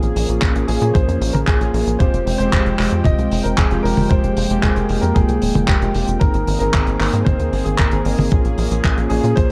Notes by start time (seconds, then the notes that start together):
Already playing: F3 A#3 C#4 F4 G#4
0.03 A#1, closed hi-hat
0.16 A#1, open hi-hat
0.29 A#1 A#3 C#4 F4 G#4, closed hi-hat
0.42 A#1, kick, clap, closed hi-hat
0.55 A#1, closed hi-hat
0.67 A#1 A#3 C#4 F4 G#4, open hi-hat
0.82 A#2, closed hi-hat
0.94 A#1 C5, kick, closed hi-hat
1.08 F2, closed hi-hat
1.21 A#1, open hi-hat
1.33 A#1 A#4, closed hi-hat, high tom
1.46 A#1 G#4, kick, clap, closed hi-hat
1.61 A#1 A#3 C#4 F4 G#4, closed hi-hat
1.74 A#1 A#3 C#4 F4 G#4, open hi-hat
1.87 A#1, closed hi-hat
1.99 F1 F3 G#3 C4 F4 G4 C5 G5, kick, closed hi-hat
2.13 F1, closed hi-hat
2.27 F1, open hi-hat
2.38 F1 G#3 C4 F4 G4 C5, closed hi-hat
2.53 F1, kick, clap, closed hi-hat
2.66 F1, closed hi-hat
2.79 F1 G#3 C4 F4 G4, clap, open hi-hat
2.91 F2, closed hi-hat
3.04 F1 D#5, kick, closed hi-hat, high tom
3.19 C2, closed hi-hat
3.31 F1, open hi-hat
3.43 F1 A#4, closed hi-hat
3.57 F1 G#4, kick, clap, closed hi-hat
3.71 F1 G#3 C4 F4 G4, closed hi-hat
3.83 F1 G#3 C4 F4 G4 A#4, open hi-hat
3.97 F1, open hi-hat, high tom
4.09 F1 G#3 A#3 C4 F4 G4 C5, kick, closed hi-hat
4.24 F1, closed hi-hat
4.37 F1, open hi-hat
4.50 F1 G#3 C4 F4 G4, closed hi-hat
4.62 F1 G#4, kick, clap, closed hi-hat
4.76 F1, closed hi-hat
4.89 F1 G#3 C4 F4 G4, open hi-hat
5.01 F2 A#4, closed hi-hat
5.14 F1 G#4, kick, closed hi-hat
5.29 C2, closed hi-hat
5.42 D#1, open hi-hat
5.55 F1, closed hi-hat, high tom
5.67 F1 G4, kick, clap, closed hi-hat
5.82 F1 G#3 C4 F4 G4, closed hi-hat
5.94 F1 G#3 C4 F4 G4, open hi-hat
6.08 F1, closed hi-hat
6.20 G#1 D#3 A#3 C4 D#4 G#4 A#4, kick, closed hi-hat
6.34 G#1, closed hi-hat
6.47 G#1, open hi-hat
6.59 G#1 C4 D#4 G#4 A#4, closed hi-hat
6.74 G#1, kick, clap, closed hi-hat
6.87 G#1, closed hi-hat
7.00 G#1 C4 D#4 G#4 A#4, clap, open hi-hat
7.13 G#2, closed hi-hat
7.25 G#1 C5, kick, closed hi-hat, high tom
7.40 D#2, closed hi-hat
7.53 G#1, open hi-hat
7.64 G#1 G#4, closed hi-hat
7.78 G#1 A#4, kick, clap, closed hi-hat
7.91 G#1 C4 D#4 G#4 A#4, closed hi-hat
8.05 G#1 C4 D#4 G#4 A#4, open hi-hat
8.18 G#1, open hi-hat, high tom
8.31 A#1 F3 A#3 C#4 F4 G#4, kick, closed hi-hat
8.45 A#1, closed hi-hat
8.58 A#1, open hi-hat
8.71 A#1 A#3 C#4 F4 G#4, closed hi-hat
8.84 A#1, kick, clap, closed hi-hat
8.98 A#1, closed hi-hat
9.09 A#1 A#3 C#4 F4 G#4, open hi-hat
9.24 A#2, closed hi-hat
9.36 A#1 C5, kick, closed hi-hat